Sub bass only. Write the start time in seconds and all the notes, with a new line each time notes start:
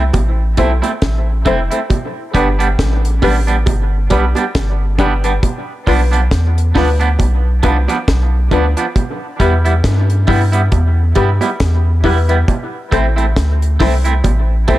Already playing: C2
0.15 A1
0.59 B1
1.03 A1
1.46 F1
2.35 G1
2.80 A1
3.24 A1
3.68 G1
4.12 B1
4.56 G1
5.88 B1
6.32 E2
6.76 D2
7.20 B1
7.65 C2
8.09 B1
8.52 D2
9.41 E2
9.85 G2
10.29 G2
10.73 E2
11.17 G2
11.61 E2
12.93 A1
13.37 D2
13.81 C2
14.25 A1
14.69 B1